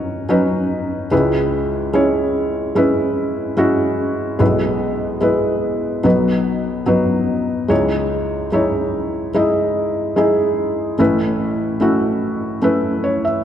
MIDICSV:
0, 0, Header, 1, 2, 480
1, 0, Start_track
1, 0, Tempo, 821918
1, 654, Time_signature, 4, 2, 24, 8
1, 7849, End_track
2, 0, Start_track
2, 0, Title_t, "Felt piano"
2, 0, Program_c, 0, 0
2, 0, Control_c, 0, 64, 127
2, 0, Note_on_c, 0, 35, 44
2, 0, Note_on_c, 0, 47, 45
2, 0, Note_on_c, 0, 54, 54
2, 0, Note_on_c, 0, 61, 50
2, 0, Note_on_c, 0, 63, 48
2, 0, Note_on_c, 0, 71, 55
2, 0, Note_on_c, 0, 73, 58
2, 144, Note_off_c, 0, 54, 0
2, 144, Note_off_c, 0, 61, 0
2, 147, Note_off_c, 0, 63, 0
2, 149, Note_off_c, 0, 73, 0
2, 170, Note_on_c, 0, 54, 58
2, 172, Note_on_c, 0, 61, 53
2, 174, Note_on_c, 0, 63, 58
2, 178, Note_off_c, 0, 71, 0
2, 178, Note_on_c, 0, 71, 62
2, 622, Note_off_c, 0, 54, 0
2, 624, Note_off_c, 0, 61, 0
2, 624, Note_off_c, 0, 63, 0
2, 627, Note_off_c, 0, 71, 0
2, 631, Note_off_c, 0, 35, 0
2, 631, Note_off_c, 0, 47, 0
2, 650, Note_on_c, 0, 56, 57
2, 651, Note_on_c, 0, 61, 47
2, 655, Note_on_c, 0, 37, 49
2, 655, Note_on_c, 0, 64, 53
2, 656, Note_on_c, 0, 49, 47
2, 657, Note_on_c, 0, 71, 66
2, 662, Control_c, 0, 64, 0
2, 758, Control_c, 0, 64, 127
2, 1102, Note_off_c, 0, 56, 0
2, 1103, Note_off_c, 0, 61, 0
2, 1105, Note_off_c, 0, 64, 0
2, 1106, Note_off_c, 0, 71, 0
2, 1130, Note_on_c, 0, 56, 55
2, 1132, Note_on_c, 0, 61, 51
2, 1135, Note_on_c, 0, 64, 49
2, 1140, Note_on_c, 0, 73, 59
2, 1583, Note_off_c, 0, 56, 0
2, 1584, Note_off_c, 0, 61, 0
2, 1585, Note_off_c, 0, 64, 0
2, 1587, Note_off_c, 0, 73, 0
2, 1607, Note_on_c, 0, 56, 55
2, 1611, Note_on_c, 0, 61, 53
2, 1614, Note_on_c, 0, 64, 58
2, 1618, Note_on_c, 0, 71, 62
2, 2062, Note_off_c, 0, 56, 0
2, 2064, Note_off_c, 0, 61, 0
2, 2065, Note_off_c, 0, 64, 0
2, 2067, Note_off_c, 0, 71, 0
2, 2083, Note_on_c, 0, 56, 53
2, 2087, Note_on_c, 0, 61, 59
2, 2088, Note_on_c, 0, 64, 57
2, 2092, Note_on_c, 0, 66, 69
2, 2539, Note_off_c, 0, 56, 0
2, 2541, Note_off_c, 0, 61, 0
2, 2541, Note_off_c, 0, 64, 0
2, 2544, Note_off_c, 0, 66, 0
2, 2550, Note_off_c, 0, 37, 0
2, 2550, Note_off_c, 0, 49, 0
2, 2562, Note_on_c, 0, 56, 54
2, 2564, Note_on_c, 0, 59, 52
2, 2566, Note_on_c, 0, 47, 50
2, 2569, Note_on_c, 0, 35, 53
2, 2571, Note_on_c, 0, 64, 55
2, 2573, Note_on_c, 0, 71, 62
2, 2581, Control_c, 0, 64, 0
2, 2667, Control_c, 0, 64, 127
2, 3018, Note_off_c, 0, 56, 0
2, 3019, Note_off_c, 0, 59, 0
2, 3023, Note_off_c, 0, 64, 0
2, 3024, Note_off_c, 0, 71, 0
2, 3042, Note_on_c, 0, 56, 57
2, 3046, Note_on_c, 0, 59, 48
2, 3047, Note_on_c, 0, 64, 47
2, 3053, Note_on_c, 0, 71, 58
2, 3499, Note_off_c, 0, 56, 0
2, 3501, Note_off_c, 0, 59, 0
2, 3502, Note_off_c, 0, 64, 0
2, 3504, Note_off_c, 0, 71, 0
2, 3506, Note_off_c, 0, 47, 0
2, 3508, Note_off_c, 0, 35, 0
2, 3525, Note_on_c, 0, 54, 51
2, 3528, Note_on_c, 0, 59, 50
2, 3529, Note_on_c, 0, 35, 42
2, 3530, Note_on_c, 0, 47, 44
2, 3530, Note_on_c, 0, 63, 45
2, 3536, Note_on_c, 0, 71, 58
2, 3541, Control_c, 0, 64, 0
2, 3656, Control_c, 0, 64, 127
2, 3982, Note_off_c, 0, 54, 0
2, 3983, Note_off_c, 0, 59, 0
2, 3984, Note_off_c, 0, 63, 0
2, 3987, Note_off_c, 0, 71, 0
2, 4008, Note_on_c, 0, 59, 47
2, 4009, Note_on_c, 0, 54, 58
2, 4014, Note_on_c, 0, 63, 48
2, 4019, Note_on_c, 0, 71, 53
2, 4467, Note_off_c, 0, 54, 0
2, 4467, Note_off_c, 0, 59, 0
2, 4469, Note_off_c, 0, 63, 0
2, 4472, Note_off_c, 0, 71, 0
2, 4473, Note_off_c, 0, 35, 0
2, 4474, Note_off_c, 0, 47, 0
2, 4487, Note_on_c, 0, 56, 49
2, 4492, Note_on_c, 0, 63, 49
2, 4493, Note_on_c, 0, 37, 48
2, 4494, Note_on_c, 0, 49, 50
2, 4494, Note_on_c, 0, 64, 43
2, 4495, Note_on_c, 0, 73, 61
2, 4507, Control_c, 0, 64, 0
2, 4593, Control_c, 0, 64, 127
2, 4946, Note_off_c, 0, 56, 0
2, 4949, Note_off_c, 0, 63, 0
2, 4950, Note_off_c, 0, 64, 0
2, 4950, Note_off_c, 0, 73, 0
2, 4977, Note_on_c, 0, 56, 50
2, 4983, Note_on_c, 0, 63, 53
2, 4983, Note_on_c, 0, 64, 49
2, 4987, Note_on_c, 0, 73, 57
2, 5431, Note_off_c, 0, 56, 0
2, 5434, Note_off_c, 0, 63, 0
2, 5434, Note_off_c, 0, 64, 0
2, 5436, Note_off_c, 0, 73, 0
2, 5457, Note_on_c, 0, 56, 57
2, 5458, Note_on_c, 0, 63, 46
2, 5462, Note_on_c, 0, 64, 52
2, 5465, Note_on_c, 0, 75, 66
2, 5911, Note_off_c, 0, 56, 0
2, 5911, Note_off_c, 0, 63, 0
2, 5914, Note_off_c, 0, 64, 0
2, 5915, Note_off_c, 0, 75, 0
2, 5934, Note_on_c, 0, 56, 58
2, 5938, Note_on_c, 0, 63, 54
2, 5942, Note_on_c, 0, 64, 54
2, 5944, Note_on_c, 0, 68, 61
2, 6388, Note_off_c, 0, 56, 0
2, 6390, Note_off_c, 0, 63, 0
2, 6393, Note_off_c, 0, 64, 0
2, 6393, Note_off_c, 0, 68, 0
2, 6395, Note_off_c, 0, 37, 0
2, 6395, Note_off_c, 0, 49, 0
2, 6416, Note_on_c, 0, 57, 56
2, 6421, Note_on_c, 0, 33, 47
2, 6421, Note_on_c, 0, 45, 49
2, 6421, Note_on_c, 0, 61, 55
2, 6422, Note_on_c, 0, 64, 56
2, 6426, Note_on_c, 0, 71, 67
2, 6429, Control_c, 0, 64, 0
2, 6522, Control_c, 0, 64, 127
2, 6867, Note_off_c, 0, 57, 0
2, 6870, Note_off_c, 0, 61, 0
2, 6870, Note_off_c, 0, 64, 0
2, 6872, Note_off_c, 0, 71, 0
2, 6894, Note_on_c, 0, 57, 52
2, 6896, Note_on_c, 0, 61, 48
2, 6900, Note_on_c, 0, 64, 52
2, 6903, Note_on_c, 0, 66, 58
2, 7345, Note_off_c, 0, 57, 0
2, 7346, Note_off_c, 0, 61, 0
2, 7348, Note_off_c, 0, 64, 0
2, 7349, Note_off_c, 0, 66, 0
2, 7370, Note_on_c, 0, 57, 57
2, 7373, Note_on_c, 0, 61, 50
2, 7380, Note_on_c, 0, 64, 56
2, 7380, Note_on_c, 0, 71, 68
2, 7614, Note_on_c, 0, 73, 52
2, 7725, Note_off_c, 0, 73, 0
2, 7736, Note_on_c, 0, 76, 49
2, 7822, Note_off_c, 0, 57, 0
2, 7823, Note_off_c, 0, 61, 0
2, 7827, Note_off_c, 0, 64, 0
2, 7827, Note_off_c, 0, 71, 0
2, 7846, Note_off_c, 0, 76, 0
2, 7849, Note_off_c, 0, 33, 0
2, 7849, Note_off_c, 0, 45, 0
2, 7849, End_track
0, 0, End_of_file